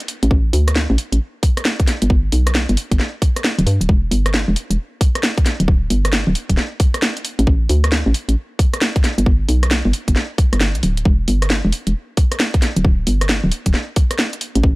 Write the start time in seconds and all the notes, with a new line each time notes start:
0.00 closed hi-hat
0.08 open hi-hat
0.23 A1, closed hi-hat
0.31 A1, kick
0.53 D2, open hi-hat
0.68 cross-stick, closed hi-hat
0.76 snare
0.90 A1
0.98 open hi-hat
1.12 A1, closed hi-hat
1.43 kick, open hi-hat
1.57 cross-stick, closed hi-hat
1.65 snare
1.80 kick, closed hi-hat
1.88 snare, open hi-hat
2.02 G1, closed hi-hat
2.10 G1, kick
2.32 B1, open hi-hat
2.47 cross-stick, closed hi-hat
2.55 snare
2.69 G1, closed hi-hat
2.77 open hi-hat
2.91 G1, kick, closed hi-hat
3.00 snare
3.22 kick, open hi-hat
3.36 cross-stick, closed hi-hat
3.44 snare
3.59 D1, closed hi-hat
3.67 G2, open hi-hat
3.81 D1, closed hi-hat
3.89 E1, kick
4.11 G1, open hi-hat
4.26 cross-stick, closed hi-hat
4.34 snare
4.48 E1
4.56 open hi-hat
4.70 E1, closed hi-hat
5.01 kick, open hi-hat
5.15 cross-stick, closed hi-hat
5.23 snare
5.38 kick, closed hi-hat
5.46 snare, open hi-hat
5.60 D1, closed hi-hat
5.68 D1, kick
5.90 G1, open hi-hat
6.05 cross-stick, closed hi-hat
6.13 snare
6.27 D1
6.35 open hi-hat
6.49 D1, kick, closed hi-hat
6.57 snare
6.80 kick, open hi-hat
6.94 cross-stick, closed hi-hat
7.02 snare
7.17 closed hi-hat
7.25 open hi-hat
7.39 A1, closed hi-hat
7.47 A1, kick
7.69 D2, open hi-hat
7.84 cross-stick, closed hi-hat
7.92 snare
8.06 A1
8.14 open hi-hat
8.29 A1, closed hi-hat
8.59 kick, open hi-hat
8.74 cross-stick, closed hi-hat
8.82 snare
8.96 kick, closed hi-hat
9.04 snare, open hi-hat
9.18 G1, closed hi-hat
9.26 G1, kick
9.49 B1, open hi-hat
9.63 cross-stick, closed hi-hat
9.71 snare
9.85 G1
9.93 open hi-hat
10.08 G1, kick, closed hi-hat
10.16 snare
10.38 kick, open hi-hat
10.53 G1, cross-stick, closed hi-hat
10.61 snare
10.75 B1, closed hi-hat
10.83 D1, open hi-hat
10.97 closed hi-hat
11.05 E1, kick
11.28 G1, open hi-hat
11.42 cross-stick, closed hi-hat
11.50 snare
11.65 E1
11.72 open hi-hat
11.87 E1, closed hi-hat
12.17 kick, open hi-hat
12.32 cross-stick, closed hi-hat
12.40 snare
12.54 kick, closed hi-hat
12.62 snare, open hi-hat
12.76 D1, closed hi-hat
12.85 D1, kick
13.07 G1, open hi-hat
13.21 cross-stick, closed hi-hat
13.29 snare
13.44 D1
13.52 open hi-hat
13.66 D1, kick, closed hi-hat
13.74 snare
13.96 kick, open hi-hat
14.11 cross-stick, closed hi-hat
14.19 snare
14.33 closed hi-hat
14.41 open hi-hat
14.55 A1, closed hi-hat
14.64 A1, kick